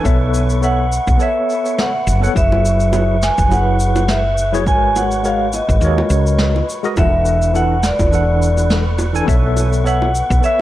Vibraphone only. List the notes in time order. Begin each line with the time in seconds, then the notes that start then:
0.65 F#5
1.22 E5
1.79 F#5
2.37 E5
3.23 G#5
3.52 F#5
4.09 E5
4.68 G#5
4.96 F#5
5.26 F5
5.55 D#5
6.98 E5
7.56 F#5
7.86 D5
9.87 F#5
10.44 E5